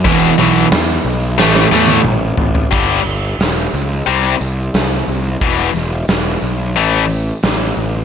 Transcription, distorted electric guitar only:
0.05 0.32 E2 medium
0.05 0.32 B2 loud
0.05 0.32 E3 medium
0.38 0.65 E2 medium
0.38 0.66 B2 medium
0.38 0.66 E3 medium
1.38 1.66 A2 loud
1.38 1.66 E3 loud
1.38 1.66 A3 loud
1.72 1.99 A2 medium
1.72 1.99 E3 loud
1.72 2.00 A3 medium
2.71 2.99 G2 medium
2.71 2.99 D3 medium
2.71 3.00 G3 medium
4.06 4.34 C3 medium
4.06 4.34 G3 medium
4.06 4.34 C4 medium
5.42 5.69 E2 medium
5.42 5.69 B2 medium
5.42 5.69 E3 medium
6.76 7.03 A2 medium
6.76 7.04 E3 medium
6.76 7.04 A3 medium

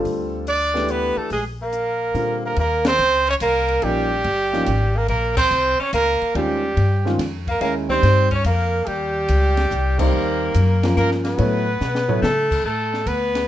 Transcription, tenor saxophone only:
0.48 0.91 D4 medium
0.90 1.19 B3 medium
1.18 1.31 A3 medium
1.33 1.45 G#3 medium
1.62 2.41 A#3 medium
2.45 2.57 A#3 medium
2.59 2.84 A#3 medium
2.88 3.26 C4 medium
3.28 3.34 C#4 medium
3.42 3.85 A#3 medium
3.84 4.97 G3 medium
4.96 5.09 A#3 medium
5.09 5.36 A#3 medium
5.37 5.76 C4 medium
5.80 5.92 C#4 medium
5.94 6.32 A#3 medium
6.35 7.11 G3 medium
7.48 7.60 A#3 medium
7.61 7.74 A#3 medium
7.90 8.29 C4 medium
8.31 8.44 C#4 medium
8.46 8.90 A#3 medium
8.88 10.00 G3 medium
9.99 10.96 A#3 medium
10.97 11.10 A#3 medium
11.25 12.18 B3 medium
12.22 12.61 A3 medium
12.65 13.08 A3 medium
13.07 13.48 B3 medium

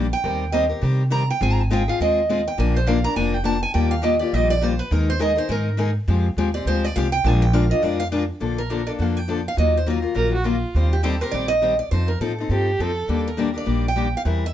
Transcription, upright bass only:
0.00 0.13 A#1 medium
0.24 0.71 D#2 loud
0.82 1.29 C3 medium
1.41 1.88 G#1 loud
2.00 2.47 D#2 medium
2.58 3.05 A#1 medium
3.16 3.63 F1 medium
3.75 4.21 D#2 loud
4.33 4.79 A#1 medium
4.91 5.38 D#2 loud
5.49 5.96 G#2 medium
6.08 6.31 F2 loud
6.37 6.62 D#2 medium
6.66 6.91 D2 medium
6.96 7.20 C2 medium
7.24 7.71 A#1 loud
7.83 8.29 F2 medium
8.41 8.88 A#1 medium
8.99 9.46 F2 medium
9.57 10.04 D#2 medium
10.16 10.63 A#1 medium
10.75 11.21 D#2 medium
11.33 11.80 A#1 medium
11.92 12.15 F2 medium
12.20 12.45 A2 medium
12.49 12.74 G2 medium
12.79 13.04 F2 medium
13.09 13.55 D#2 medium
13.67 14.13 A#1 medium
14.25 14.54 E2 medium

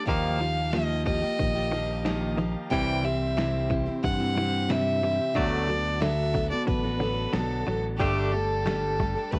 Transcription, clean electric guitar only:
0.08 0.39 D#3 medium
0.08 0.39 F3 medium
0.08 0.39 A#3 medium
0.41 0.70 D#3 medium
0.41 0.71 F3 medium
0.74 1.03 D#3 medium
0.74 1.04 F3 medium
1.06 1.36 D#3 medium
1.06 1.36 F3 medium
1.39 1.69 D#3 medium
1.39 1.69 F3 medium
1.71 2.02 D#3 medium
1.71 2.02 F3 medium
2.05 2.35 D#3 medium
2.05 2.35 F3 medium
2.37 2.68 D#3 medium
2.37 2.68 F3 medium
2.71 3.03 C3 medium
2.71 3.03 E3 medium
2.71 3.03 G3 medium
3.05 3.35 C3 medium
3.05 3.35 E3 medium
3.37 3.67 C3 medium
3.37 3.68 E3 medium
3.70 4.00 C3 medium
3.70 4.00 E3 medium
4.04 4.34 C3 medium
4.04 4.34 E3 medium
4.38 4.67 C3 medium
4.38 4.67 E3 medium
4.71 5.00 C3 medium
4.71 5.00 E3 medium
5.03 5.33 C3 medium
5.03 5.33 E3 medium
5.35 5.66 D3 medium
5.35 5.67 F#3 medium
5.35 5.67 A3 medium
5.69 5.99 D3 medium
5.69 5.99 F#3 medium
6.02 6.32 D3 medium
6.02 6.32 F#3 medium
6.34 6.64 D3 medium
6.34 6.65 F#3 medium
6.67 6.97 D3 medium
6.67 6.97 F#3 medium
7.00 7.30 D3 medium
7.00 7.30 F#3 medium
7.33 7.63 D3 medium
7.33 7.63 F#3 medium
7.67 7.97 D3 medium
7.67 7.97 F#3 medium
8.00 8.31 G3 medium
8.00 8.31 A3 medium
8.00 8.31 D4 medium
8.33 8.63 G3 medium
8.33 8.63 A3 medium
8.66 8.96 G3 medium
8.66 8.96 A3 medium
9.00 9.29 G3 medium
9.00 9.29 A3 medium
9.33 9.39 G3 medium
9.33 9.39 A3 medium

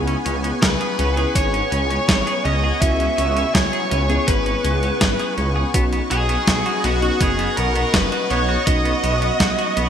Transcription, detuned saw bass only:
0.00 0.16 C#2 loud
0.26 0.52 C#2 medium
0.62 0.76 C#2 loud
0.99 1.26 C#2 loud
1.35 1.62 G#1 loud
1.72 1.99 C#2 medium
2.09 2.22 G#1 loud
2.45 2.72 C#2 medium
2.82 3.08 C#2 loud
3.18 3.45 C#2 medium
3.55 3.68 C#2 loud
3.92 4.18 C#2 loud
4.28 4.55 G#1 loud
4.64 4.91 C#2 medium
5.01 5.14 G#1 medium
5.38 5.64 C#2 medium
5.74 6.01 B1 loud
6.11 6.38 B1 medium
6.47 6.61 B1 loud
6.84 7.11 B1 loud
7.21 7.47 F#1 loud
7.57 7.84 B1 medium
7.94 8.07 F#1 medium
8.30 8.57 B1 medium
8.67 8.94 B1 loud
9.03 9.30 B1 medium
9.40 9.53 B1 loud
9.77 9.89 B1 loud

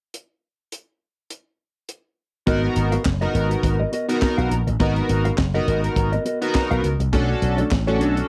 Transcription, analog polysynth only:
2.47 2.95 B3 loud
2.47 2.95 D#4 medium
2.47 2.95 F#4 medium
2.47 2.95 A#4 loud
3.21 3.77 B3 medium
3.21 3.78 D#4 medium
3.21 3.78 F#4 medium
3.21 3.78 A#4 medium
4.09 4.54 B3 medium
4.09 4.54 D#4 medium
4.09 4.54 F#4 medium
4.09 4.55 A#4 loud
4.79 5.28 B3 medium
4.79 5.28 D#4 medium
4.79 5.28 F#4 medium
4.79 5.28 A#4 loud
5.54 6.10 B3 medium
5.54 6.10 D#4 medium
5.54 6.11 F#4 medium
5.54 6.11 A#4 medium
6.41 6.87 B3 loud
6.41 6.87 D#4 medium
6.41 6.87 F#4 medium
6.41 6.88 A#4 loud
7.13 7.61 C#4 medium
7.13 7.61 D4 medium
7.13 7.61 F#4 medium
7.13 7.61 A4 loud
7.87 8.28 C#4 medium
7.87 8.28 D4 medium
7.87 8.28 F#4 medium
7.87 8.28 A4 medium

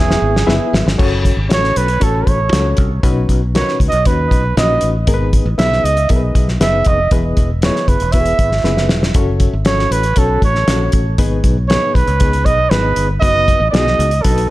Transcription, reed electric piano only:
0.00 0.34 B3 medium
0.00 0.34 E4 medium
0.00 0.34 G#4 medium
0.00 0.34 B4 medium
0.00 0.34 E5 medium
0.47 0.85 B3 medium
0.47 0.85 E4 medium
0.47 0.85 G#4 medium
0.47 0.85 B4 medium
0.47 0.85 E5 medium
0.98 1.36 C#4 medium
0.98 1.36 F#4 medium
0.98 1.36 A4 medium
0.98 1.36 C#5 medium
1.49 1.87 C#4 medium
1.49 1.87 F#4 medium
1.49 1.56 G#4 soft
1.49 1.87 C#5 medium
1.55 1.90 A4 medium
2.00 2.38 C#4 medium
2.00 2.38 F#4 medium
2.00 2.38 A4 medium
2.00 2.39 C#5 medium
2.52 2.90 C#4 medium
2.52 2.90 F#4 medium
2.52 2.90 A4 medium
2.52 2.90 C#5 medium
3.03 3.76 B2 medium
3.03 3.41 C#4 medium
3.03 3.41 D#4 medium
3.03 3.41 F#4 medium
3.03 3.41 B4 medium
3.55 3.92 C#4 medium
3.55 3.93 D#4 medium
3.55 3.92 F#4 medium
3.55 3.61 A#4 medium
3.61 3.96 B4 medium
4.06 4.43 C#4 medium
4.06 4.44 D#4 medium
4.06 4.44 F#4 medium
4.06 4.44 B4 medium
4.57 4.94 C#4 medium
4.57 4.95 D#4 medium
4.57 4.95 F#4 medium
4.57 4.95 B4 medium
5.07 5.80 G#2 medium
5.07 5.45 B3 medium
5.07 5.45 D#4 medium
5.07 5.45 G#4 medium
5.07 5.14 A#4 medium
5.14 5.48 B4 medium
5.58 5.96 B3 medium
5.58 5.96 D#4 medium
5.58 5.96 G#4 medium
5.58 5.96 B4 medium
6.09 6.47 B3 medium
6.09 6.47 D#4 medium
6.09 6.47 G#4 medium
6.09 6.16 A#4 medium
6.16 6.50 B4 medium
6.60 6.98 B3 medium
6.60 6.98 D#4 medium
6.60 6.98 G#4 medium
6.60 6.98 B4 medium
7.12 7.84 E3 medium
7.12 7.49 B3 medium
7.12 7.49 E4 medium
7.12 7.49 G#4 medium
7.12 7.49 B4 medium
7.63 8.00 B3 medium
7.63 8.00 E4 medium
7.63 8.00 G#4 medium
7.63 8.00 B4 medium
8.14 8.51 B3 medium
8.14 8.51 E4 medium
8.14 8.20 F#4 medium
8.14 8.51 B4 medium
8.21 8.54 G#4 medium
8.64 9.02 B3 medium
8.64 9.02 E4 medium
8.64 9.02 G#4 medium
8.64 9.02 B4 medium
9.15 9.53 C#4 medium
9.15 9.53 F#4 medium
9.15 9.53 A4 medium
9.15 9.53 C#5 medium
9.66 10.04 C#4 medium
9.66 10.03 F#4 medium
9.66 10.04 A4 medium
9.66 10.04 C#5 medium
10.17 10.54 C#4 medium
10.17 10.54 F#4 medium
10.17 10.54 A4 medium
10.17 10.54 C#5 medium
10.68 11.05 C#4 medium
10.68 11.05 F#4 medium
10.68 11.05 A4 medium
10.68 11.06 C#5 medium
11.19 11.91 G#2 medium
11.19 11.56 B3 medium
11.19 11.56 D#4 medium
11.19 11.57 G#4 medium
11.19 11.56 B4 medium
11.70 12.07 B3 medium
11.70 12.07 D#4 medium
11.70 12.07 G#4 medium
11.70 12.07 B4 medium
12.21 12.58 B3 medium
12.21 12.58 D#4 medium
12.21 12.58 G#4 medium
12.21 12.58 B4 medium
12.72 13.09 B3 medium
12.72 13.09 D#4 medium
12.72 13.09 G#4 medium
12.72 13.09 B4 medium
13.21 13.59 B3 medium
13.21 13.59 D#4 medium
13.21 13.60 F#4 medium
13.21 13.60 B4 medium
13.72 14.10 B3 medium
13.72 14.10 D#4 medium
13.72 14.10 F#4 medium
13.72 14.11 G#4 medium
14.24 14.50 B3 medium
14.24 14.30 D4 medium
14.24 14.50 F#4 medium
14.24 14.50 B4 medium
14.31 14.50 D#4 medium

